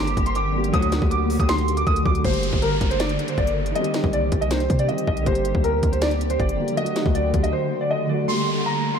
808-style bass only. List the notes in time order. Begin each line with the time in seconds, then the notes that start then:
Already playing: G1
0.17 G1
0.74 D2
1.02 D2
1.40 D2
1.87 D2
2.06 D2
2.25 G1
2.53 G1
2.81 G1
3.38 G1
4.04 C2
4.32 C2
4.70 C3
5.07 C2
5.26 G1
5.55 D2
5.83 D2
6.40 G1
7.06 D2
7.34 D2